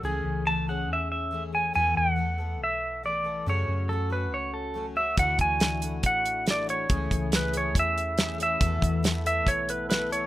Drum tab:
HH |--------|--------|--------|xxxxxxxx|
SD |--------|--------|--------|--o---o-|
BD |--------|--------|--------|oo--o---|

HH |xxxxxxxx|xxxxxxxx|
SD |--o---o-|--o---o-|
BD |oo--o---|oo--o---|